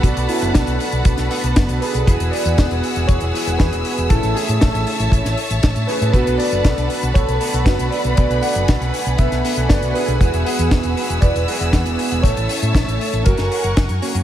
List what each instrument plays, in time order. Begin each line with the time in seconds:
Already playing: string section B4 F#5 A5 B5
0.02 fingered electric bass B1, analog polysynth B3 D4 F#4 A4, grand piano D4 F#4, kick, closed hi-hat
0.16 fingered electric bass B1, closed hi-hat
0.28 grand piano C#4 E4, open hi-hat
0.42 fingered electric bass F#1, closed hi-hat
0.53 fingered electric bass B1, grand piano D4 F#4, kick, snare, closed hi-hat
0.67 fingered electric bass B1, closed hi-hat
0.80 open hi-hat
0.92 fingered electric bass B1, closed hi-hat
1.05 fingered electric bass B1, kick, closed hi-hat
1.17 fingered electric bass B1, snare, closed hi-hat
1.31 analog polysynth B3 D4 F#4 A4, open hi-hat
1.44 fingered electric bass B1, closed hi-hat
1.56 kick, snare, closed hi-hat
1.69 fingered electric bass B1, closed hi-hat
1.80 grand piano G#4 B4, open hi-hat
1.94 fingered electric bass B1, closed hi-hat
2.06 fingered electric bass E1, analog polysynth B3 E4 F#4 G#4, grand piano G#4 B4, string section F#5 G#5 E6, kick, closed hi-hat
2.20 fingered electric bass E1, closed hi-hat
2.31 grand piano B4 D5, open hi-hat
2.45 fingered electric bass E2, closed hi-hat
2.58 fingered electric bass E1, kick, snare, closed hi-hat
2.71 fingered electric bass E1, closed hi-hat
2.83 open hi-hat
2.96 fingered electric bass E1, closed hi-hat
3.07 fingered electric bass E1, grand piano G#4 C#5, kick, closed hi-hat
3.20 fingered electric bass E1, closed hi-hat
3.34 analog polysynth B3 E4 F#4 G#4, open hi-hat
3.47 fingered electric bass E1, closed hi-hat
3.58 fingered electric bass E2, grand piano G#4 B4, kick, snare, closed hi-hat
3.72 fingered electric bass E1, closed hi-hat
3.85 open hi-hat
3.98 fingered electric bass E1, closed hi-hat
4.09 fingered electric bass A1, analog polysynth A3 C#4 E4 A4, grand piano E4 A4, string section C#5 E5 A5, kick, closed hi-hat
4.23 fingered electric bass A1, closed hi-hat
4.35 grand piano E4 G#4, open hi-hat
4.49 fingered electric bass A2, closed hi-hat
4.60 fingered electric bass A1, grand piano E4 A4, kick, snare, closed hi-hat
4.74 fingered electric bass A1, closed hi-hat
4.87 open hi-hat
5.00 fingered electric bass A1, closed hi-hat
5.12 fingered electric bass A1, kick, closed hi-hat
5.25 fingered electric bass A1, snare, closed hi-hat
5.37 open hi-hat
5.50 fingered electric bass A1, closed hi-hat
5.63 fingered electric bass A1, kick, snare, closed hi-hat
5.76 fingered electric bass A2, closed hi-hat
5.87 analog polysynth A3 C#4 E4 C#5, grand piano G#4 B4, open hi-hat
6.01 fingered electric bass A2, closed hi-hat
6.12 fingered electric bass B1, analog polysynth B3 D4 F#4 A4, grand piano F#4 B4, string section B4 F#5 B5, kick, closed hi-hat
6.27 fingered electric bass B1, closed hi-hat
6.38 grand piano B4 D5, open hi-hat
6.52 fingered electric bass F#1, closed hi-hat
6.65 fingered electric bass B1, kick, snare, closed hi-hat
6.78 fingered electric bass B1, closed hi-hat
6.90 open hi-hat
7.03 fingered electric bass B1, closed hi-hat
7.14 fingered electric bass B1, grand piano A4 C#5, kick, closed hi-hat
7.28 fingered electric bass B1, closed hi-hat
7.41 analog polysynth B3 D4 F#4 A4, open hi-hat
7.54 fingered electric bass B1, closed hi-hat
7.65 fingered electric bass F#1, grand piano F#4 B4, kick, snare, closed hi-hat
7.79 fingered electric bass B1, closed hi-hat
7.90 grand piano B4 D5, open hi-hat
8.04 fingered electric bass B1, closed hi-hat
8.16 fingered electric bass B1, analog polysynth B3 D4 F#4 A4, grand piano B4 D5, string section G#5, kick, closed hi-hat
8.30 fingered electric bass B1, closed hi-hat
8.41 grand piano D5 F#5, open hi-hat
8.55 fingered electric bass F#1, closed hi-hat
8.68 fingered electric bass B1, kick, snare, closed hi-hat
8.81 fingered electric bass B1, closed hi-hat
8.94 open hi-hat
9.06 fingered electric bass B1, closed hi-hat
9.17 fingered electric bass B1, grand piano B4 E5, kick, closed hi-hat
9.32 fingered electric bass B1, snare, closed hi-hat
9.44 analog polysynth B3 D4 F#4 A4, open hi-hat
9.57 fingered electric bass B1, closed hi-hat
9.68 fingered electric bass F#1, grand piano B4 D5, kick, snare, closed hi-hat
9.82 fingered electric bass B1, closed hi-hat
9.93 grand piano G#4 B4, open hi-hat
10.08 fingered electric bass B1, closed hi-hat
10.21 fingered electric bass E1, analog polysynth B3 E4 F#4 G#4, string section B4 E6, kick, closed hi-hat
10.33 fingered electric bass E1, closed hi-hat
10.45 grand piano G#4 B4, open hi-hat
10.59 fingered electric bass E2, closed hi-hat
10.71 fingered electric bass E1, kick, snare, closed hi-hat
10.83 fingered electric bass E1, closed hi-hat
10.97 open hi-hat
11.10 fingered electric bass E1, closed hi-hat
11.21 fingered electric bass E1, grand piano B4 D5, kick, closed hi-hat
11.35 fingered electric bass E1, closed hi-hat
11.48 analog polysynth B3 E4 F#4 G#4, open hi-hat
11.61 fingered electric bass E1, closed hi-hat
11.73 fingered electric bass E2, kick, snare, closed hi-hat
11.86 fingered electric bass E1, closed hi-hat
11.99 open hi-hat
12.12 fingered electric bass E1, closed hi-hat
12.23 fingered electric bass A1, analog polysynth A3 C#4 E4 A4, grand piano A4 C#5, string section C#5 E5 A5, kick, closed hi-hat
12.37 fingered electric bass A1, closed hi-hat
12.49 open hi-hat
12.62 fingered electric bass A2, closed hi-hat
12.75 fingered electric bass A1, kick, snare, closed hi-hat
12.88 fingered electric bass A1, closed hi-hat
13.01 open hi-hat
13.13 fingered electric bass A1, closed hi-hat
13.24 fingered electric bass F#1, grand piano F#4 A#4, string section A#4 F#5 G#5 C#6, kick, closed hi-hat
13.37 fingered electric bass F#1, snare, closed hi-hat
13.52 open hi-hat
13.64 fingered electric bass F#1, closed hi-hat
13.77 fingered electric bass F#1, kick, snare, closed hi-hat
13.89 fingered electric bass F#2, closed hi-hat
14.02 analog polysynth A#3 C#4 F#4 C#5, open hi-hat
14.15 fingered electric bass F#2, closed hi-hat